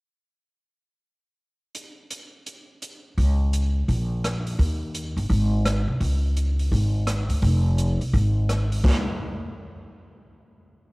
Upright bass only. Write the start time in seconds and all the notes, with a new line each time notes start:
3.18 C#2
3.88 A#1
4.59 D#2
5.16 G1
5.29 G#1
5.88 C2
6.00 C#2
6.72 G#1
7.29 D2
7.42 F1
8.00 C2
8.13 G#1
8.84 C#2